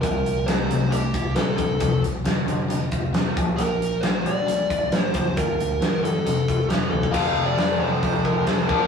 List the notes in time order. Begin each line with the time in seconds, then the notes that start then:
0.01 C2 C3 G3 A#4, kick, closed hi-hat
0.26 closed hi-hat
0.46 C2 C3 A3 C5, snare, closed hi-hat
0.68 C2 C3 A3, closed hi-hat
0.90 C2 C3 A3 G4, closed hi-hat
1.14 C2, kick, closed hi-hat
1.36 A#2 C3 G3 A4, snare, closed hi-hat
1.57 G2 C3 G3 A4, kick, closed hi-hat
1.79 F1 F2 C3, kick, closed hi-hat
2.03 C2, closed hi-hat
2.24 F1 F2 D3, snare, closed hi-hat
2.47 F1 F2 D3, closed hi-hat
2.68 F1 F2 D3, closed hi-hat
2.92 F1, kick, closed hi-hat
3.13 F1 F2 C3, snare, closed hi-hat
3.35 A#1 A#2 F3, kick, closed hi-hat
3.56 A#1 A#2 F3 A#4, closed hi-hat
3.82 closed hi-hat
4.01 A#1 A#2 G3 C5, snare, closed hi-hat
4.23 A#1 A#2 G3 D5, closed hi-hat
4.46 A#1 A#2 G3, closed hi-hat
4.70 A#1, kick, closed hi-hat
4.92 G2 A#2 F3, snare, closed hi-hat
5.03 C5
5.14 F#1 A#2 F3, kick, closed hi-hat
5.37 G1 G2 D3 A#4, kick, closed hi-hat
5.59 D2, closed hi-hat
5.81 G1 G2 E3, snare, closed hi-hat
6.03 G1 G2 E3 A4, closed hi-hat
6.25 F1 F2 C3, closed hi-hat
6.48 F1, kick, closed hi-hat
6.68 F1 F2 C3 G4, snare, closed hi-hat
6.90 D2 F2 C3 A4, high tom
7.03 kick
7.11 F1 F2 C3 F3 A3 C4 F4 F5, kick, crash
7.35 F1
7.46 D5
7.57 F1, snare, open hi-hat
7.79 F1 C5
8.02 F1 F2 C3 F3 A3 C4 F4, kick, open hi-hat
8.25 F1 A#4, kick
8.47 F1 C5, snare, open hi-hat
8.69 A#1 A#2 D3 F3 A#3 D4 F4 A#4, kick